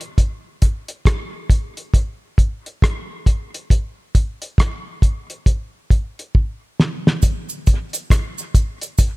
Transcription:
0.01 closed hi-hat
0.18 kick, closed hi-hat
0.62 kick, closed hi-hat
0.88 closed hi-hat
1.05 kick, cross-stick, closed hi-hat
1.50 kick, closed hi-hat
1.77 closed hi-hat
1.94 kick, closed hi-hat
2.38 kick, closed hi-hat
2.66 closed hi-hat
2.82 kick, cross-stick, closed hi-hat
3.26 kick, closed hi-hat
3.54 closed hi-hat
3.70 kick, closed hi-hat
4.15 kick, closed hi-hat
4.42 closed hi-hat
4.58 kick, cross-stick, closed hi-hat
5.02 kick, closed hi-hat
5.30 closed hi-hat
5.46 kick, closed hi-hat
5.90 kick, closed hi-hat
6.19 closed hi-hat
6.35 kick
6.80 snare
7.07 snare
7.22 kick, closed hi-hat, cabasa
7.49 cabasa
7.67 kick, closed hi-hat, cabasa
7.93 closed hi-hat, cabasa
8.10 kick, cross-stick, closed hi-hat, cabasa
8.38 cabasa
8.55 kick, closed hi-hat, cabasa
8.81 closed hi-hat, cabasa
8.98 kick, closed hi-hat, cabasa

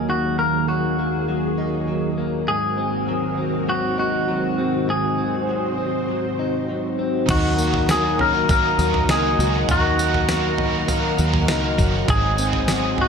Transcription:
Already playing: D#2 D#3 F#3 A#3 D#4
0.08 D#3 F#4 G#4
0.39 A#3 A#4
0.68 F#3 F#4
0.99 A#3
1.28 F#3
1.58 D#4
1.88 F#3
2.18 A#3
2.48 G#2 D#3 C4 F#4 G#4 A#4
2.78 C4
3.08 F#3
3.38 C4
3.68 F#3 F#4
3.98 D#4 F#4
4.28 F#3
4.58 C4
4.88 G#2 G#4 C5
5.18 C4
5.49 F#3
5.78 C4
6.09 F#3
6.39 D#4
6.69 F#3
6.99 C4
7.26 D#2 D#3 F#3 D#4 A#4 D#5 F#5 D#6, kick, floor tom, crash, tambourine
7.30 D#4 F#4 A#4
7.59 A#3, tambourine
7.74 floor tom
7.89 F#3 G#4, snare, tambourine
8.19 C#4 A#4, floor tom
8.34 D#4
8.48 F#3 A#3 D#4 F#4 A#4, kick, floor tom, tambourine
8.53 A#4
8.79 D#2 F#3, tambourine
8.94 floor tom
9.08 C#2 F#3 D#4 F#4 G#4, snare, tambourine
9.13 A#4
9.39 C#2 F#3, tambourine
9.68 D#2 D#3 F#3 D#4 F#4 A#4 F6, floor tom, tambourine
9.97 A#3 F#4 A#4, tambourine
10.03 D#4
10.14 floor tom
10.29 F#3, snare, tambourine
10.58 D#4, floor tom
10.87 F#3 A#3 D#4, floor tom, tambourine
10.91 F#4 A#4
11.18 D#2 F#3, tambourine
11.34 floor tom
11.47 C#2 F#3 D#4 F#4, snare, tambourine
11.52 A#4
11.78 F#1 F#3, kick, tambourine
12.07 G#1 G#2 D#3 F#3 C4 D#4 F#4 G#4 C5 F#5 G#5 D#6, kick, floor tom, tambourine
12.37 C4 F#4 G#4, tambourine
12.42 F#3
12.53 floor tom
12.68 F#3, snare, tambourine
12.98 D#4 F#4, floor tom

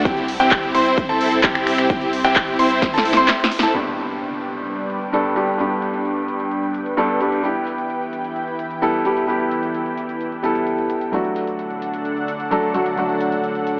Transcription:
0.05 C2 C4 E4 G4 C5 E5 G5, kick, closed hi-hat
0.17 closed hi-hat
0.28 open hi-hat, ride
0.40 C2 C4 E4 G4 G5, closed hi-hat
0.51 kick, clap, closed hi-hat
0.63 closed hi-hat
0.75 C2 C4 E4 C5 C6, open hi-hat, ride
0.86 closed hi-hat
0.98 kick, closed hi-hat
1.09 C2 C4 E4 A4 A5, closed hi-hat
1.21 open hi-hat, ride
1.32 closed hi-hat
1.43 C2 C4 E4 G4 G5, kick, clap, closed hi-hat
1.55 finger snap, closed hi-hat
1.67 finger snap, open hi-hat, ride
1.78 finger snap, closed hi-hat
1.90 C2 E4 G4 G5, kick, closed hi-hat
2.01 closed hi-hat
2.13 open hi-hat, ride
2.24 C2 C4 E4 G4 G5, finger snap, closed hi-hat
2.36 kick, clap, closed hi-hat
2.48 closed hi-hat
2.59 C2 C4 E4 C5 C6, open hi-hat, ride
2.71 closed hi-hat
2.82 kick, snare, closed hi-hat
2.94 C2 C4 E4 A4 A5, snare, open hi-hat
3.05 open hi-hat, ride
3.13 C2 C4 E4 C5 C6, snare, closed hi-hat
3.28 snare, clap, closed hi-hat
3.40 snare, closed hi-hat
3.51 open hi-hat, ride
3.59 C4 E4 A4 A5, snare, closed hi-hat
3.73 G2 G3 B3 D4 G4 B4 G5, impact
3.98 closed hi-hat
4.09 closed hi-hat
4.21 closed hi-hat
4.32 closed hi-hat
4.44 closed hi-hat
4.55 closed hi-hat
4.67 closed hi-hat
4.78 closed hi-hat
4.90 closed hi-hat
5.01 closed hi-hat
5.12 G2 G3 B3 D4 A4, closed hi-hat
5.25 closed hi-hat
5.36 G2 G3 B3 D4 G4, closed hi-hat
5.48 closed hi-hat
5.58 G2 G3 B3 D4 G4, closed hi-hat
5.71 closed hi-hat
5.82 closed hi-hat
5.94 closed hi-hat
6.05 closed hi-hat
6.17 closed hi-hat
6.28 closed hi-hat
6.40 closed hi-hat
6.51 closed hi-hat
6.63 closed hi-hat
6.75 closed hi-hat
6.86 closed hi-hat
6.97 G2 G3 B3 D4 A4, closed hi-hat
7.09 closed hi-hat
7.20 G3 B3 D4 G4, closed hi-hat
7.32 closed hi-hat
7.42 E3 G3 B3 E4 G4, closed hi-hat
7.55 closed hi-hat
7.67 closed hi-hat
7.78 closed hi-hat
7.90 closed hi-hat
8.01 closed hi-hat
8.13 closed hi-hat
8.24 closed hi-hat
8.36 closed hi-hat
8.48 closed hi-hat
8.59 closed hi-hat
8.71 closed hi-hat
8.82 G3 B3 E4 A4, closed hi-hat
8.94 closed hi-hat
9.05 G3 B3 E4 G4, closed hi-hat
9.17 closed hi-hat
9.27 G3 B3 E4 G4, closed hi-hat
9.40 closed hi-hat
9.51 closed hi-hat
9.63 closed hi-hat
9.75 closed hi-hat
9.86 closed hi-hat
9.98 closed hi-hat
10.09 closed hi-hat
10.21 closed hi-hat
10.32 closed hi-hat
10.43 G3 B3 E4 A4, closed hi-hat
10.55 closed hi-hat
10.67 closed hi-hat
10.78 closed hi-hat
10.90 closed hi-hat
11.01 closed hi-hat
11.12 D3 F#3 A3 D4 F#4 A4 F#5, closed hi-hat
11.24 closed hi-hat
11.36 closed hi-hat
11.48 closed hi-hat
11.59 closed hi-hat
11.71 closed hi-hat
11.82 closed hi-hat
11.94 closed hi-hat
12.05 closed hi-hat
12.17 closed hi-hat
12.28 closed hi-hat
12.40 closed hi-hat
12.51 F#3 A3 D4 A4, closed hi-hat
12.63 closed hi-hat
12.74 F#3 A3 D4 F#4, closed hi-hat
12.86 closed hi-hat
12.96 F#3 A3 D4 F#4, closed hi-hat
13.09 closed hi-hat
13.21 closed hi-hat
13.32 closed hi-hat
13.44 closed hi-hat
13.55 closed hi-hat
13.67 closed hi-hat

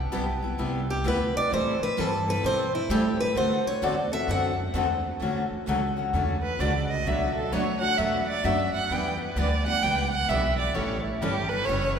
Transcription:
Already playing: C2 F#5
0.12 B1 C3 G3 B3 E4 G4
0.42 B3 E4 G4
0.59 C2 C3 G3 B3 E4 G4
0.90 G4
1.05 D2 C3 G3 B3 E4 G4 B4
1.35 D5, muted upright bass stroke
1.52 A2 E3 G3 C4 E4 A4 C5
1.81 B4, muted upright bass stroke
1.98 G2 E3 G3 C4 E4 A4
2.28 C4 E4 A4 B4
2.44 B2 E3 G3 C4 E4 A4 C5
2.75 E4
2.90 A2 E3 G3 C4 E4 G4 A4
3.20 B4
3.35 D2 D3 A3 C4 F#4 A4 C5
3.65 C#5, muted upright bass stroke
3.82 E2 D3 A3 C4 F#4 A4 D5
4.12 C4 F#4 A4 E5
4.28 F#2 D3 A3 C4 F#4 A4 F#5
4.74 E2 D3 A3 C4 F#4 A4
5.20 D2 D3 F#3 A3 C#4 F#4 A4
5.50 muted upright bass stroke
5.67 C#2 D3 F#3 A3 C#4 F#4 A4
5.97 A3 C#4 F#4
6.13 E2 D3 F#3 A3 C#4 F#4 A4
6.42 B4
6.59 C#2 D3 F#3 A3 C#4 F#4 A4 D5
6.90 D#5
7.04 B1 B2 F#3 A3 D4 F#4 B4 E5
7.35 A4
7.51 D2 B2 F#3 A3 D4 F#4 B4 C#5
7.81 A3 D4 F#4 F#5
7.98 E2 B2 F#3 A3 D4 F#4 B4 E5
8.29 D5
8.44 F#2 B2 F#3 A3 D4 F#4 B4 E5
8.74 F#5, muted upright bass stroke
8.90 E2 E3 G3 B3 D4 E4 G4 B4 G5
9.21 B4
9.36 D2 E3 G3 B3 D4 E4 G4 B4 D5
9.66 B3 D4 G4 F#5
9.82 C#2 E3 G3 B3 D4 E4 G4 B4 G5
10.12 F#5
10.29 B1 E3 G3 B3 D4 E4 G4 B4 E5
10.58 D5
10.74 A1 E3 G3 C#4 E4 A4 C#5
11.04 E4
11.21 G1 E3 G3 C#4 E4 G4 A4
11.48 E4 A4 B4
11.53 C#4
11.65 F#1 E3 C#5
11.69 G3 C#4 E4 A4

